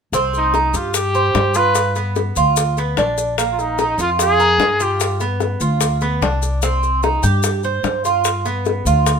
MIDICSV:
0, 0, Header, 1, 5, 480
1, 0, Start_track
1, 0, Key_signature, -3, "minor"
1, 0, Tempo, 405680
1, 160, Time_signature, 4, 2, 24, 8
1, 10881, End_track
2, 0, Start_track
2, 0, Title_t, "Trumpet"
2, 0, Program_c, 0, 56
2, 441, Note_on_c, 0, 63, 83
2, 901, Note_on_c, 0, 65, 69
2, 919, Note_off_c, 0, 63, 0
2, 1120, Note_off_c, 0, 65, 0
2, 1127, Note_on_c, 0, 67, 101
2, 1849, Note_on_c, 0, 71, 93
2, 1866, Note_off_c, 0, 67, 0
2, 2324, Note_off_c, 0, 71, 0
2, 4168, Note_on_c, 0, 65, 61
2, 4256, Note_on_c, 0, 63, 94
2, 4274, Note_off_c, 0, 65, 0
2, 4728, Note_off_c, 0, 63, 0
2, 4754, Note_on_c, 0, 65, 83
2, 4854, Note_off_c, 0, 65, 0
2, 4989, Note_on_c, 0, 68, 118
2, 5707, Note_on_c, 0, 67, 87
2, 5725, Note_off_c, 0, 68, 0
2, 6174, Note_off_c, 0, 67, 0
2, 10881, End_track
3, 0, Start_track
3, 0, Title_t, "Cuban tres"
3, 0, Program_c, 1, 25
3, 166, Note_on_c, 1, 60, 80
3, 629, Note_off_c, 1, 60, 0
3, 644, Note_on_c, 1, 63, 66
3, 875, Note_off_c, 1, 63, 0
3, 878, Note_on_c, 1, 67, 63
3, 1344, Note_off_c, 1, 67, 0
3, 1359, Note_on_c, 1, 72, 69
3, 1825, Note_off_c, 1, 72, 0
3, 1842, Note_on_c, 1, 65, 68
3, 2307, Note_off_c, 1, 65, 0
3, 2320, Note_on_c, 1, 59, 68
3, 2786, Note_off_c, 1, 59, 0
3, 2802, Note_on_c, 1, 65, 67
3, 3267, Note_off_c, 1, 65, 0
3, 3293, Note_on_c, 1, 59, 82
3, 3520, Note_off_c, 1, 59, 0
3, 3526, Note_on_c, 1, 62, 67
3, 3989, Note_off_c, 1, 62, 0
3, 4003, Note_on_c, 1, 58, 74
3, 4468, Note_off_c, 1, 58, 0
3, 4483, Note_on_c, 1, 63, 64
3, 4715, Note_off_c, 1, 63, 0
3, 4730, Note_on_c, 1, 65, 63
3, 5191, Note_off_c, 1, 65, 0
3, 5203, Note_on_c, 1, 70, 71
3, 5667, Note_off_c, 1, 70, 0
3, 5682, Note_on_c, 1, 65, 74
3, 6147, Note_off_c, 1, 65, 0
3, 6162, Note_on_c, 1, 59, 73
3, 6627, Note_off_c, 1, 59, 0
3, 6640, Note_on_c, 1, 65, 62
3, 7105, Note_off_c, 1, 65, 0
3, 7121, Note_on_c, 1, 59, 80
3, 7353, Note_off_c, 1, 59, 0
3, 7361, Note_on_c, 1, 62, 62
3, 7826, Note_off_c, 1, 62, 0
3, 7844, Note_on_c, 1, 60, 77
3, 8307, Note_off_c, 1, 60, 0
3, 8322, Note_on_c, 1, 63, 58
3, 8554, Note_off_c, 1, 63, 0
3, 8555, Note_on_c, 1, 67, 68
3, 9023, Note_off_c, 1, 67, 0
3, 9045, Note_on_c, 1, 72, 69
3, 9508, Note_off_c, 1, 72, 0
3, 9526, Note_on_c, 1, 65, 70
3, 9988, Note_off_c, 1, 65, 0
3, 10005, Note_on_c, 1, 59, 79
3, 10468, Note_off_c, 1, 59, 0
3, 10489, Note_on_c, 1, 65, 60
3, 10881, Note_off_c, 1, 65, 0
3, 10881, End_track
4, 0, Start_track
4, 0, Title_t, "Upright bass"
4, 0, Program_c, 2, 32
4, 147, Note_on_c, 2, 36, 86
4, 826, Note_off_c, 2, 36, 0
4, 868, Note_on_c, 2, 43, 91
4, 1547, Note_off_c, 2, 43, 0
4, 1590, Note_on_c, 2, 43, 81
4, 2724, Note_off_c, 2, 43, 0
4, 2794, Note_on_c, 2, 38, 94
4, 3470, Note_off_c, 2, 38, 0
4, 3515, Note_on_c, 2, 34, 78
4, 4646, Note_off_c, 2, 34, 0
4, 4706, Note_on_c, 2, 41, 91
4, 5386, Note_off_c, 2, 41, 0
4, 5422, Note_on_c, 2, 43, 80
4, 6560, Note_off_c, 2, 43, 0
4, 6631, Note_on_c, 2, 38, 90
4, 7308, Note_off_c, 2, 38, 0
4, 7352, Note_on_c, 2, 36, 85
4, 8484, Note_off_c, 2, 36, 0
4, 8552, Note_on_c, 2, 43, 102
4, 9228, Note_off_c, 2, 43, 0
4, 9270, Note_on_c, 2, 43, 76
4, 10402, Note_off_c, 2, 43, 0
4, 10474, Note_on_c, 2, 38, 102
4, 10881, Note_off_c, 2, 38, 0
4, 10881, End_track
5, 0, Start_track
5, 0, Title_t, "Drums"
5, 157, Note_on_c, 9, 60, 61
5, 158, Note_on_c, 9, 70, 81
5, 275, Note_off_c, 9, 60, 0
5, 276, Note_off_c, 9, 70, 0
5, 395, Note_on_c, 9, 60, 32
5, 403, Note_on_c, 9, 70, 30
5, 514, Note_off_c, 9, 60, 0
5, 522, Note_off_c, 9, 70, 0
5, 636, Note_on_c, 9, 60, 53
5, 642, Note_on_c, 9, 70, 24
5, 754, Note_off_c, 9, 60, 0
5, 760, Note_off_c, 9, 70, 0
5, 875, Note_on_c, 9, 70, 67
5, 877, Note_on_c, 9, 60, 36
5, 993, Note_off_c, 9, 70, 0
5, 996, Note_off_c, 9, 60, 0
5, 1112, Note_on_c, 9, 70, 96
5, 1113, Note_on_c, 9, 60, 60
5, 1230, Note_off_c, 9, 70, 0
5, 1231, Note_off_c, 9, 60, 0
5, 1354, Note_on_c, 9, 70, 26
5, 1472, Note_off_c, 9, 70, 0
5, 1592, Note_on_c, 9, 70, 26
5, 1596, Note_on_c, 9, 60, 65
5, 1596, Note_on_c, 9, 61, 78
5, 1711, Note_off_c, 9, 70, 0
5, 1714, Note_off_c, 9, 60, 0
5, 1714, Note_off_c, 9, 61, 0
5, 1825, Note_on_c, 9, 70, 63
5, 1840, Note_on_c, 9, 60, 33
5, 1944, Note_off_c, 9, 70, 0
5, 1958, Note_off_c, 9, 60, 0
5, 2070, Note_on_c, 9, 70, 80
5, 2074, Note_on_c, 9, 60, 63
5, 2189, Note_off_c, 9, 70, 0
5, 2193, Note_off_c, 9, 60, 0
5, 2311, Note_on_c, 9, 70, 28
5, 2317, Note_on_c, 9, 60, 35
5, 2430, Note_off_c, 9, 70, 0
5, 2435, Note_off_c, 9, 60, 0
5, 2552, Note_on_c, 9, 70, 27
5, 2560, Note_on_c, 9, 60, 57
5, 2670, Note_off_c, 9, 70, 0
5, 2678, Note_off_c, 9, 60, 0
5, 2792, Note_on_c, 9, 70, 72
5, 2910, Note_off_c, 9, 70, 0
5, 3033, Note_on_c, 9, 70, 89
5, 3044, Note_on_c, 9, 60, 62
5, 3151, Note_off_c, 9, 70, 0
5, 3162, Note_off_c, 9, 60, 0
5, 3280, Note_on_c, 9, 70, 26
5, 3281, Note_on_c, 9, 60, 33
5, 3399, Note_off_c, 9, 60, 0
5, 3399, Note_off_c, 9, 70, 0
5, 3516, Note_on_c, 9, 60, 67
5, 3516, Note_on_c, 9, 61, 76
5, 3520, Note_on_c, 9, 70, 26
5, 3634, Note_off_c, 9, 60, 0
5, 3634, Note_off_c, 9, 61, 0
5, 3638, Note_off_c, 9, 70, 0
5, 3759, Note_on_c, 9, 60, 32
5, 3759, Note_on_c, 9, 70, 68
5, 3877, Note_off_c, 9, 60, 0
5, 3878, Note_off_c, 9, 70, 0
5, 3999, Note_on_c, 9, 60, 67
5, 4007, Note_on_c, 9, 70, 82
5, 4118, Note_off_c, 9, 60, 0
5, 4126, Note_off_c, 9, 70, 0
5, 4243, Note_on_c, 9, 60, 34
5, 4250, Note_on_c, 9, 70, 30
5, 4361, Note_off_c, 9, 60, 0
5, 4368, Note_off_c, 9, 70, 0
5, 4478, Note_on_c, 9, 70, 28
5, 4481, Note_on_c, 9, 60, 57
5, 4596, Note_off_c, 9, 70, 0
5, 4599, Note_off_c, 9, 60, 0
5, 4716, Note_on_c, 9, 70, 72
5, 4723, Note_on_c, 9, 60, 35
5, 4834, Note_off_c, 9, 70, 0
5, 4842, Note_off_c, 9, 60, 0
5, 4959, Note_on_c, 9, 60, 69
5, 4966, Note_on_c, 9, 70, 93
5, 5077, Note_off_c, 9, 60, 0
5, 5084, Note_off_c, 9, 70, 0
5, 5204, Note_on_c, 9, 70, 25
5, 5322, Note_off_c, 9, 70, 0
5, 5439, Note_on_c, 9, 60, 63
5, 5439, Note_on_c, 9, 61, 77
5, 5444, Note_on_c, 9, 70, 23
5, 5557, Note_off_c, 9, 60, 0
5, 5557, Note_off_c, 9, 61, 0
5, 5562, Note_off_c, 9, 70, 0
5, 5678, Note_on_c, 9, 70, 64
5, 5683, Note_on_c, 9, 60, 29
5, 5796, Note_off_c, 9, 70, 0
5, 5801, Note_off_c, 9, 60, 0
5, 5918, Note_on_c, 9, 70, 80
5, 5927, Note_on_c, 9, 60, 70
5, 6036, Note_off_c, 9, 70, 0
5, 6046, Note_off_c, 9, 60, 0
5, 6156, Note_on_c, 9, 70, 28
5, 6157, Note_on_c, 9, 60, 33
5, 6275, Note_off_c, 9, 60, 0
5, 6275, Note_off_c, 9, 70, 0
5, 6393, Note_on_c, 9, 60, 55
5, 6398, Note_on_c, 9, 70, 26
5, 6512, Note_off_c, 9, 60, 0
5, 6516, Note_off_c, 9, 70, 0
5, 6632, Note_on_c, 9, 70, 67
5, 6750, Note_off_c, 9, 70, 0
5, 6870, Note_on_c, 9, 60, 68
5, 6872, Note_on_c, 9, 70, 95
5, 6989, Note_off_c, 9, 60, 0
5, 6990, Note_off_c, 9, 70, 0
5, 7109, Note_on_c, 9, 70, 25
5, 7117, Note_on_c, 9, 60, 31
5, 7227, Note_off_c, 9, 70, 0
5, 7235, Note_off_c, 9, 60, 0
5, 7361, Note_on_c, 9, 70, 26
5, 7365, Note_on_c, 9, 60, 66
5, 7365, Note_on_c, 9, 61, 83
5, 7479, Note_off_c, 9, 70, 0
5, 7483, Note_off_c, 9, 60, 0
5, 7483, Note_off_c, 9, 61, 0
5, 7600, Note_on_c, 9, 70, 59
5, 7606, Note_on_c, 9, 60, 34
5, 7719, Note_off_c, 9, 70, 0
5, 7724, Note_off_c, 9, 60, 0
5, 7833, Note_on_c, 9, 70, 77
5, 7844, Note_on_c, 9, 60, 63
5, 7952, Note_off_c, 9, 70, 0
5, 7962, Note_off_c, 9, 60, 0
5, 8083, Note_on_c, 9, 60, 29
5, 8084, Note_on_c, 9, 70, 26
5, 8201, Note_off_c, 9, 60, 0
5, 8203, Note_off_c, 9, 70, 0
5, 8315, Note_on_c, 9, 70, 28
5, 8327, Note_on_c, 9, 60, 61
5, 8433, Note_off_c, 9, 70, 0
5, 8446, Note_off_c, 9, 60, 0
5, 8556, Note_on_c, 9, 70, 72
5, 8563, Note_on_c, 9, 60, 34
5, 8674, Note_off_c, 9, 70, 0
5, 8681, Note_off_c, 9, 60, 0
5, 8792, Note_on_c, 9, 70, 88
5, 8800, Note_on_c, 9, 60, 67
5, 8910, Note_off_c, 9, 70, 0
5, 8919, Note_off_c, 9, 60, 0
5, 9030, Note_on_c, 9, 70, 24
5, 9149, Note_off_c, 9, 70, 0
5, 9277, Note_on_c, 9, 60, 60
5, 9277, Note_on_c, 9, 61, 82
5, 9277, Note_on_c, 9, 70, 26
5, 9395, Note_off_c, 9, 70, 0
5, 9396, Note_off_c, 9, 60, 0
5, 9396, Note_off_c, 9, 61, 0
5, 9521, Note_on_c, 9, 60, 35
5, 9521, Note_on_c, 9, 70, 62
5, 9639, Note_off_c, 9, 70, 0
5, 9640, Note_off_c, 9, 60, 0
5, 9756, Note_on_c, 9, 70, 76
5, 9761, Note_on_c, 9, 60, 61
5, 9875, Note_off_c, 9, 70, 0
5, 9879, Note_off_c, 9, 60, 0
5, 10003, Note_on_c, 9, 70, 28
5, 10004, Note_on_c, 9, 60, 34
5, 10121, Note_off_c, 9, 70, 0
5, 10123, Note_off_c, 9, 60, 0
5, 10236, Note_on_c, 9, 70, 29
5, 10252, Note_on_c, 9, 60, 55
5, 10354, Note_off_c, 9, 70, 0
5, 10370, Note_off_c, 9, 60, 0
5, 10487, Note_on_c, 9, 70, 72
5, 10605, Note_off_c, 9, 70, 0
5, 10725, Note_on_c, 9, 60, 70
5, 10725, Note_on_c, 9, 70, 90
5, 10844, Note_off_c, 9, 60, 0
5, 10844, Note_off_c, 9, 70, 0
5, 10881, End_track
0, 0, End_of_file